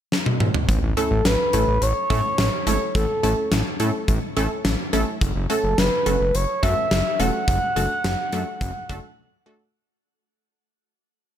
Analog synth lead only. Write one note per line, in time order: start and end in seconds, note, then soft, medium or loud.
0.97 1.27 A4 medium
1.26 1.83 B4 medium
1.82 2.66 C#5 loud
2.67 2.93 C#5 medium
2.95 3.48 A4 medium
5.50 5.80 A4 medium
5.78 6.36 B4 medium
6.35 6.62 C#5 loud
6.63 7.21 E5 loud
7.20 9.46 F#5 loud